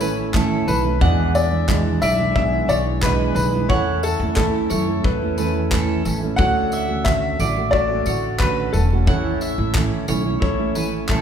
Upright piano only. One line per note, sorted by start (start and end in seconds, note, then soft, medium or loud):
0.68 1.37 B4 medium
1.35 2.04 D5 medium
2.02 2.34 E5 loud
2.36 2.70 E5 medium
2.69 2.76 D5 loud
3.02 3.33 B4 medium
3.35 3.70 B4 medium
3.69 4.00 C#5 loud
4.04 4.35 A4 medium
4.36 5.67 A4 medium
6.36 7.07 F#5 loud
7.04 7.74 E5 loud
7.71 8.41 D5 loud
8.39 8.74 B4 medium
8.73 10.04 A4 medium